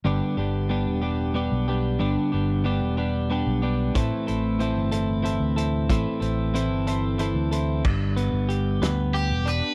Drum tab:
CC |------|------|------|------|
HH |------|------|xxxxxx|xxxxxx|
SD |------|------|------|------|
BD |------|------|o-----|o-----|

CC |x-----|
HH |-xxxxx|
SD |---o--|
BD |o-----|